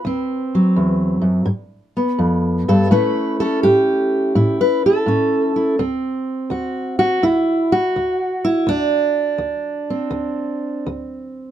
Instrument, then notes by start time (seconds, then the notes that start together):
steel-string acoustic guitar
Already playing: B4
0.05 D2 C4
0.55 F#3
0.76 E2
1.21 F#2
1.46 G2
1.97 B3
2.18 F2
2.68 G2 A4
2.91 A2 A3 C#4 E4 B4
3.40 C#4 A4
3.63 A2 G4
4.35 A2 E4
4.61 B4
4.86 E4 A4
5.06 A2 C#4
5.56 E4
5.79 D2 C4
6.50 D2 F#4
6.99 F#4
7.23 D2 E4
7.72 F#4
7.96 D2
8.45 E4
8.67 D2 D4
9.38 D2
9.90 C4
10.11 D2
10.86 D2